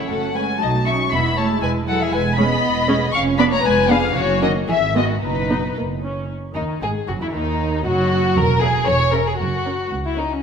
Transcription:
0.00 C#5
0.09 F#1 F#3 A3 C#4 A4 F#5
0.34 G#3 A3 C#4 B4 G#5
0.59 B1 F#3 A3 D#4 D#5 A5
0.86 F#3 C#4 D#4 E5 C#6
1.11 E1 G#3 B3 E4 E5 B5
1.36 G#3 A3 E4 C#5 A5
1.62 E1 G#3 B4 G#5
1.87 F#3 G#3 E4 A4 F#5
2.00 E3 G#4 E5
2.12 E1 G#3 B4 G#5
2.36 G#3 B3 C#4 D#5 B5
2.64 E1
2.89 G#3 C#4
3.12 F1 C#4 F5 C#6
3.39 B3 D4 D5 B5
3.52 A#3 C#5 A#5
3.64 F1 G#3 B4 G#5
3.89 F3 B3 D4 G#4 F5
4.15 F#1 C#3 F#4 C#5
4.42 D#3 A#3 C#4 F#4 D#5
4.68 G#1 E3 G#4 E5
4.95 D#3 G#3 B3 F#4 D#5
5.22 F#1 B2 D#4 B4
5.50 B3 D#4
5.77 F#1 A#3
6.03 C#4
6.55 D#2 D#3 D#4
6.82 G#1 G#2 G#3 G#4
7.07 F#1 F#2 F#3 F#4
7.20 E2 E3 E4
7.33 D#2 D#3 D#4
7.85 F#1 F#2 F#3 F#4
8.36 E1 E2 A#4
8.61 C#4 G#4 E5
8.87 E1 E2 C#5
9.12 C#4 G#4 A#4 E5
9.27 G#4
9.38 F#1 F#2 F#4
9.65 C#4 A#4 C#5
9.91 C#2
10.05 E4
10.18 C#4 D#4 A#4 C#5
10.32 C#4

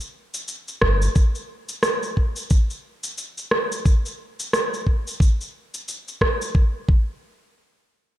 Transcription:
0.00 shaker
0.34 shaker
0.48 shaker
0.68 shaker
0.82 G1, kick, cross-stick
1.02 shaker
1.16 kick, shaker
1.35 shaker
1.69 shaker
1.83 cross-stick, shaker
2.03 shaker
2.17 kick
2.36 shaker
2.50 kick, shaker
2.70 shaker
3.03 shaker
3.18 shaker
3.38 shaker
3.51 cross-stick
3.72 shaker
3.86 kick, shaker
4.06 shaker
4.40 shaker
4.53 cross-stick, shaker
4.74 shaker
4.87 kick
5.07 shaker
5.20 kick, shaker
5.41 shaker
5.74 shaker
5.88 shaker
6.08 shaker
6.21 kick, cross-stick
6.42 shaker
6.55 kick
6.89 kick

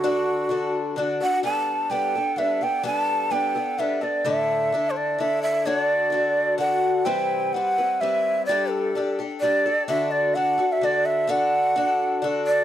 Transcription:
Already playing: F#4
0.04 D3 D4 F#4 A4
0.49 D3 D4 F#4 A4
0.96 D3 D4 F#4 A4
1.21 D4 F#4 A4 F#5
1.43 G3 B3 D4 A4 A5
1.90 G3 B3 D4 A4 G5
2.16 B3 D4 A4
2.36 G3 B3 D4 A4 E5
2.61 B3 D4 A4 G5
2.83 G3 B3 D4 A4 A5
3.30 G3 B3 D4 A4 G5
3.55 B3 D4 A4
3.78 G3 B3 D4 A4 E5
4.01 B3 D4 A4 D5
4.24 A2 D3 D4 E4 A4 E5
4.72 D3 D4 E4 A4
4.90 C5
4.97 D5
5.19 D3 D4 E4 A4 E5
5.43 E5
5.66 D3 D4 F#4 A4 C#5
5.81 D5
6.10 D3 D4 F#4 A4
6.58 D3 D4 F#4 A4 F#5
7.05 C3 E3 G3 C4 E4 B4 G5
7.53 G3 C4 E4 B4 F#5
7.78 G3 C4 E4 B4
8.01 G3 C4 E4 B4 E5
8.46 G3 D4 G4 D5
8.51 A4
8.70 A4
8.95 G3 D4 G4 A4
9.19 D4 G4 A4
9.40 G3 D4 G4 D5
9.45 A4
9.66 D4 G4 A4
9.88 D3 D4 F#4 A4 E5
10.11 D5
10.34 D3 D4 F#4 A4 F#5
10.58 D4 F#4 A4
10.72 E5
10.81 D3 D4 F#4 A4 D5
11.06 E5
11.27 D3 D4 F#4 A4 F#5
11.76 D3 D4 F#4 A4
12.22 D3 D4 F#4 A4
12.47 D5

